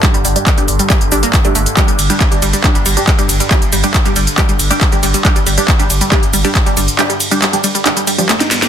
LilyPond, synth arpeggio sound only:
\new Staff \with { instrumentName = "Synth arpeggio sound" } { \clef bass \time 4/4 \key c \dorian \tempo 4 = 138 r16 g16 g16 r16 g16 g16 r16 g16 g16 r16 d'16 bes16 r16 a16 a16 r16 | g16 g16 r16 g16 g16 r16 g16 g16 r16 g16 g16 r16 g16 g16 r16 g16 | g16 r16 g16 g16 r16 g16 g16 r16 g16 g16 r16 g16 g16 r16 g16 g16 | r16 g16 g16 r16 g16 g16 r16 g16 g16 r16 g16 g16 r16 g16 g16 r16 |
g16 g16 r16 g16 g16 r16 g16 g16 r16 g16 g16 f16 a16 ees'16 r16 g'16 | }